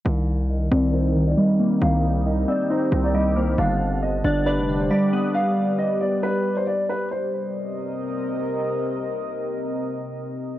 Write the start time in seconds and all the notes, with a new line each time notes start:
0.05 C2 D#3 C4 G4 A#4 D#5 F5
0.50 D#5
0.71 C2 C4 D5
0.93 D#4 C5
1.16 D#3
1.28 D5
1.37 G3 D#5
1.60 A#3
1.82 C2 D#3 C5 F5
2.26 D#5
2.48 C4 D5
2.70 D#4 C5
2.92 C2 D#3
3.04 D5
3.14 G3 D#5
3.36 A#3 C5
3.58 G1 D3 G3 B4 D5 F5
4.03 D#5
4.24 G1 D4 D5
4.46 B4 D5
4.58 F1
4.69 D3
4.80 C5
4.91 G3 D5
5.13 B3
5.35 F5
5.79 D#5
6.01 D5
6.23 B4
6.57 C5
6.67 D5
6.89 B4
7.11 C3 C4 A#4 C5 D#5